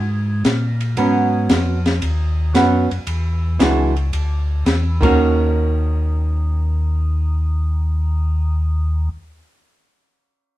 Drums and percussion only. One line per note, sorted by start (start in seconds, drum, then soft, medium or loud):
0.45 snare medium
0.45 hi-hat pedal soft
0.45 ride medium
0.81 ride soft
0.97 ride medium
1.49 snare medium
1.49 hi-hat pedal medium
1.49 ride medium
1.86 snare soft
1.86 ride soft
2.02 ride medium
2.55 snare medium
2.55 hi-hat pedal medium
2.55 ride medium
2.91 ride soft
3.07 ride medium
3.60 snare medium
3.60 hi-hat pedal medium
3.60 ride medium
3.96 ride soft
4.13 ride medium
4.66 snare medium
4.66 hi-hat pedal soft
4.66 ride medium
5.02 kick soft
5.02 crash medium